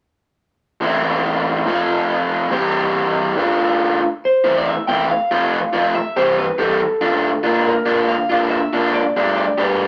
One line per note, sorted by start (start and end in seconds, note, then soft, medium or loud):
0.81 1.65 A2 medium
0.81 1.65 E3 medium
0.81 1.66 A3 medium
0.81 1.66 C4 medium
0.81 1.66 E4 medium
1.66 2.50 F3 medium
1.66 2.51 A3 medium
1.66 2.51 C4 medium
1.66 2.52 F4 medium
2.50 3.35 E3 medium
2.50 3.36 G3 medium
2.50 3.36 C4 medium
2.50 3.37 G4 medium
3.37 4.00 D3 medium
3.37 4.00 A3 medium
3.37 4.00 D4 medium
3.37 4.01 F4 medium
4.25 4.57 C5 medium
4.44 4.72 E3 medium
4.44 4.72 A3 medium
4.44 4.72 C4 medium
4.44 4.72 E4 medium
4.57 4.67 D5 medium
4.67 4.87 E5 medium
4.87 5.10 E3 medium
4.87 5.10 A3 medium
4.87 5.09 C4 medium
4.87 5.09 E4 medium
4.87 5.09 G5 medium
5.10 5.95 F5 medium
5.31 5.59 F3 medium
5.31 5.58 A3 medium
5.31 5.59 C4 medium
5.31 5.58 F4 medium
5.73 5.95 F3 medium
5.73 5.95 A3 medium
5.73 5.94 C4 medium
5.73 5.94 F4 medium
5.95 6.17 E5 medium
6.17 6.44 E3 medium
6.17 6.45 G3 medium
6.17 6.44 C4 medium
6.17 6.44 G4 medium
6.17 6.36 C5 medium
6.38 6.58 B4 medium
6.58 6.80 E3 medium
6.58 6.80 G3 medium
6.58 6.80 C4 medium
6.58 6.80 G4 medium
6.58 7.41 A4 medium
7.01 7.29 D3 medium
7.01 7.29 A3 medium
7.01 7.29 D4 medium
7.01 7.29 F4 medium
7.43 7.72 D3 medium
7.43 7.72 A#3 medium
7.43 7.72 D4 medium
7.43 7.72 F4 medium
7.67 8.10 A#4 medium
7.86 8.15 D3 medium
7.86 8.14 A#3 medium
7.86 8.14 D4 medium
7.86 8.14 F4 medium
8.08 8.50 F5 medium
8.30 8.59 D3 medium
8.30 8.59 A#3 medium
8.30 8.58 D4 medium
8.30 8.58 F4 medium
8.51 8.91 E5 medium
8.73 9.02 D3 medium
8.73 9.01 A#3 medium
8.73 9.01 D4 medium
8.73 9.01 F4 medium
8.94 9.36 D5 medium
9.16 9.45 G3 medium
9.16 9.44 A3 medium
9.16 9.44 D4 medium
9.16 9.44 G4 medium
9.37 9.59 D5 medium
9.58 9.87 G3 medium
9.58 9.87 A3 medium
9.58 9.86 D4 medium
9.58 9.86 G4 medium
9.58 9.87 B4 medium